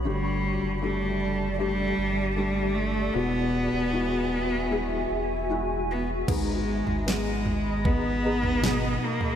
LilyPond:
<<
  \new Staff \with { instrumentName = "Ambient pad" } { \time 4/4 \key gis \minor \tempo 4 = 77 <g' d'' a''>1 | <fis' e'' gis''>1 | <gis' dis'' b''>1 | }
  \new Staff \with { instrumentName = "Felt piano" } { \time 4/4 \key gis \minor <a d' g'>4 <a d' g'>4 <a d' g'>4 <a d' g'>4 | <gis e' fis'>4 <gis e' fis'>4 <gis e' gis'>4 <gis e' fis'>4 | <b dis' gis'>4 <b dis' gis'>4 <b dis' gis'>8 <b dis' gis'>8 <b, dis' gis'>4 | }
  \new Staff \with { instrumentName = "Felt piano" } { \clef bass \time 4/4 \key gis \minor <d g>4. r2 r8 | b,4. r2 r8 | <gis, dis>4. r2 r8 | }
  \new Staff \with { instrumentName = "Cello" } { \clef bass \time 4/4 \key gis \minor g4 g4 g4 g8 a8 | b2. r8 b8 | gis4 gis4 b4. ais8 | }
  \new Staff \with { instrumentName = "Sub bass" } { \clef bass \time 4/4 \key gis \minor g,,8. fis,,4.~ fis,,16 g,,4. | e,,8. dis,,4.~ dis,,16 e,,4. | gis,,8. gis,,2~ gis,,8. r8 | }
  \new DrumStaff \with { instrumentName = "Drums" } \drummode { \time 4/4 r4 r4 r4 r4 | r4 r4 r4 r4 | <cymc bd tomfh>8. tomfh16 sn8 tomfh8 <bd tomfh>8. tomfh16 sn8. tomfh16 | }
>>